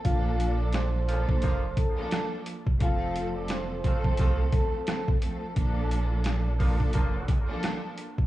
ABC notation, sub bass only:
X:1
M:4/4
L:1/16
Q:"Swing 16ths" 1/4=87
K:Bblyd
V:1 name="Sub bass" clef=bass
B,,,6- B,,, z F,,,2 z4 z E,,, | F,,,6- F,,, z C,,2 z6 | B,,,6- B,,, z F,,,2 z4 z E,,, |]